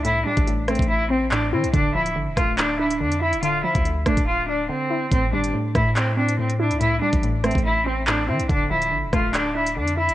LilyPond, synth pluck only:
\new Staff \with { instrumentName = "Synth pluck" } { \clef bass \time 4/4 \key a \minor \tempo 4 = 142 <a, c' e'>8 g8 a,8 a4 c'8 a,8 e'8 | d8 f8 d8 a4 d'8 d8 e'8 | d8 f8 d8 a4 d'8 d8 e'8 | a,8 g8 a,8 a4 c'8 a,8 e'8 |
a,8 g8 a,8 a4 c'8 a,8 e'8 | d8 f8 d8 a4 d'8 d8 e'8 | }